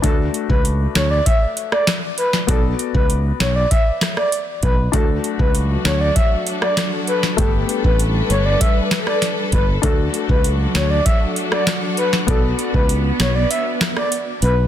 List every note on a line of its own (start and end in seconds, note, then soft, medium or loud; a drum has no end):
0.02 0.28 D2 loud
0.02 2.44 A3 medium
0.02 2.44 D4 medium
0.02 2.45 F#4 medium
0.02 0.16 A4 loud
0.02 kick loud
0.02 closed hi-hat medium
0.34 closed hi-hat medium
0.50 0.86 C#2 loud
0.50 0.62 B4 medium
0.50 kick loud
0.65 closed hi-hat medium
0.95 1.20 D2 loud
0.95 1.08 C#5 medium
0.95 cross-stick loud
0.95 snare loud
0.95 closed hi-hat medium
1.11 1.23 D5 medium
1.26 1.38 E5 medium
1.26 kick loud
1.26 closed hi-hat medium
1.57 closed hi-hat medium
1.72 1.84 D5 medium
1.72 cross-stick loud
1.87 cross-stick medium
1.87 snare loud
1.87 closed hi-hat medium
2.18 2.30 B4 medium
2.18 closed hi-hat soft
2.33 snare medium
2.47 2.73 B1 loud
2.47 4.89 B3 medium
2.47 4.89 F#4 medium
2.47 2.61 A4 loud
2.47 4.90 D5 medium
2.47 kick loud
2.47 closed hi-hat medium
2.79 closed hi-hat medium
2.94 3.31 C#2 loud
2.94 3.07 B4 medium
2.94 kick loud
3.10 closed hi-hat medium
3.40 3.64 B1 medium
3.40 3.53 C#5 loud
3.40 cross-stick medium
3.40 snare loud
3.40 closed hi-hat medium
3.56 3.68 D5 medium
3.71 3.83 E5 medium
3.71 kick loud
3.71 closed hi-hat medium
4.01 cross-stick loud
4.01 snare loud
4.01 closed hi-hat medium
4.17 4.29 D5 medium
4.17 cross-stick loud
4.32 closed hi-hat medium
4.63 4.87 B1 medium
4.63 4.75 B4 medium
4.63 kick medium
4.63 closed hi-hat soft
4.92 5.18 D2 loud
4.92 7.36 F#3 medium
4.92 7.34 A3 medium
4.92 7.34 D4 medium
4.92 9.79 D4 medium
4.92 7.36 F#4 medium
4.92 7.35 F#4 medium
4.92 5.06 A4 loud
4.92 12.24 A4 loud
4.92 kick loud
4.92 closed hi-hat medium
5.24 closed hi-hat medium
5.39 5.76 C#2 medium
5.39 5.52 B4 medium
5.39 kick loud
5.55 closed hi-hat medium
5.85 6.09 D2 medium
5.85 5.97 C#5 medium
5.85 cross-stick medium
5.85 snare loud
5.85 closed hi-hat medium
6.01 6.13 D5 medium
6.16 6.28 E5 medium
6.16 kick loud
6.16 closed hi-hat medium
6.47 closed hi-hat medium
6.62 6.74 D5 medium
6.62 cross-stick loud
6.77 cross-stick medium
6.77 snare loud
6.77 closed hi-hat medium
7.07 7.20 B4 medium
7.07 closed hi-hat soft
7.23 snare medium
7.37 7.62 G1 loud
7.37 9.81 G3 medium
7.37 9.79 A3 medium
7.37 9.79 B3 medium
7.37 9.80 G4 medium
7.37 7.51 A4 loud
7.37 9.81 B4 medium
7.37 kick loud
7.37 closed hi-hat medium
7.69 closed hi-hat medium
7.84 8.21 A1 medium
7.84 7.97 B4 medium
7.84 kick loud
8.00 closed hi-hat medium
8.30 8.54 G1 medium
8.30 8.42 C#5 loud
8.30 closed hi-hat medium
8.46 8.58 D5 medium
8.61 8.73 E5 medium
8.61 kick loud
8.61 closed hi-hat medium
8.91 cross-stick loud
8.91 snare loud
8.91 closed hi-hat medium
9.07 9.19 D5 medium
9.07 cross-stick loud
9.22 snare medium
9.22 closed hi-hat medium
9.52 9.77 G1 loud
9.52 9.65 B4 medium
9.52 kick medium
9.52 closed hi-hat soft
9.82 10.07 D2 loud
9.82 12.26 F#3 medium
9.82 12.24 A3 medium
9.82 12.23 D4 medium
9.82 14.68 D4 medium
9.82 14.68 F#4 medium
9.82 12.25 F#4 medium
9.82 9.95 A4 loud
9.82 kick loud
9.82 closed hi-hat medium
10.14 closed hi-hat medium
10.29 10.65 C#2 medium
10.29 10.41 B4 medium
10.29 kick loud
10.44 closed hi-hat medium
10.75 10.99 D2 medium
10.75 10.87 C#5 medium
10.75 cross-stick medium
10.75 snare loud
10.75 closed hi-hat medium
10.90 11.03 D5 medium
11.06 11.18 E5 medium
11.06 kick loud
11.06 closed hi-hat medium
11.36 closed hi-hat medium
11.52 11.64 D5 medium
11.52 cross-stick loud
11.67 cross-stick medium
11.67 snare loud
11.67 closed hi-hat medium
11.97 12.10 B4 medium
11.97 closed hi-hat soft
12.13 snare medium
12.27 12.52 B1 loud
12.27 14.68 B3 medium
12.27 14.68 F#4 medium
12.27 12.40 A4 medium
12.27 14.68 D5 medium
12.27 kick loud
12.27 closed hi-hat medium
12.59 closed hi-hat medium
12.74 13.10 C#2 loud
12.74 12.86 B4 medium
12.74 kick loud
12.89 closed hi-hat medium
13.20 13.44 B1 loud
13.20 13.32 C#5 loud
13.20 cross-stick medium
13.20 snare loud
13.20 closed hi-hat medium
13.35 13.48 D5 medium
13.51 13.63 E5 medium
13.51 closed hi-hat medium
13.81 cross-stick loud
13.81 snare loud
13.81 closed hi-hat medium
13.97 14.09 D5 medium
13.97 cross-stick loud
14.12 closed hi-hat medium
14.42 14.67 B1 medium
14.42 14.55 B4 medium
14.42 closed hi-hat soft